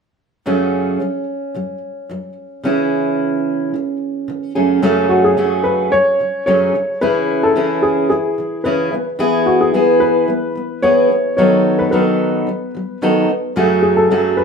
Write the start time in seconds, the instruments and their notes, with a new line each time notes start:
0.46 steel-string acoustic guitar F#2 C#3 F#3 A3 C#4 G#4
1.00 steel-string acoustic guitar F#2 C#3 F#3
1.54 steel-string acoustic guitar F#2 C#3 F#3
2.09 steel-string acoustic guitar F#2 C#3 F#3
2.64 steel-string acoustic guitar C#3 E3 C#4 E4 G#4
3.74 steel-string acoustic guitar C#3 E3
4.28 steel-string acoustic guitar C#3 E3
4.55 steel-string acoustic guitar F#2 C#3 F#3 A3 C#4 G#4
4.82 steel-string acoustic guitar F#2 C#3 F#3 A3 C#4 G#4
5.09 upright piano F#4
5.24 upright piano G#4
5.37 steel-string acoustic guitar F#2 C#3 F#3 A3 C#4 G#4
5.64 upright piano B4
5.92 steel-string acoustic guitar F#2 C#3 F#3, upright piano C#5
6.19 steel-string acoustic guitar F#2 C#3 F#3
6.46 steel-string acoustic guitar F#2 C#3 F#3 A3 C#4 G#4, upright piano C#5
6.74 steel-string acoustic guitar F#2 C#3 F#3
7.01 steel-string acoustic guitar C#3 E3 C#4 E4 G#4, upright piano B4
7.43 upright piano A4
7.56 steel-string acoustic guitar C#3 E3 C#4 E4 G#4
7.82 upright piano G#4
8.10 steel-string acoustic guitar C#3 E3, upright piano G#4
8.38 steel-string acoustic guitar C#3 E3
8.64 steel-string acoustic guitar C#3 E3 C#4 E4 G#4, upright piano B4
8.92 steel-string acoustic guitar E3 B3
9.19 steel-string acoustic guitar E3 B3 E4 G#4
9.46 upright piano F#4
9.61 upright piano G#4
9.74 steel-string acoustic guitar E3 B3 E4 G#4
10.00 upright piano B4
10.28 steel-string acoustic guitar E3 B3
10.55 steel-string acoustic guitar E3 B3
10.82 steel-string acoustic guitar E3 B3 E4 G#4, upright piano C#5
11.10 steel-string acoustic guitar E3 B3
11.37 steel-string acoustic guitar D#3 F#3 B3 D#4 A4, upright piano C#5
11.79 upright piano B4
11.91 steel-string acoustic guitar D#3 F#3 B3 D#4 A4, upright piano B4
12.47 steel-string acoustic guitar D#3 F#3
12.75 steel-string acoustic guitar D#3 F#3
13.02 steel-string acoustic guitar D#3 F#3 B3 D#4 A4
13.29 steel-string acoustic guitar D#3 F#3
13.56 steel-string acoustic guitar F#2 C#3 F#3 A3 F#4 G#4
13.82 upright piano G#4
13.97 upright piano A4
14.11 steel-string acoustic guitar F#2 C#3 F#3 A3 F#4 G#4
14.37 upright piano B4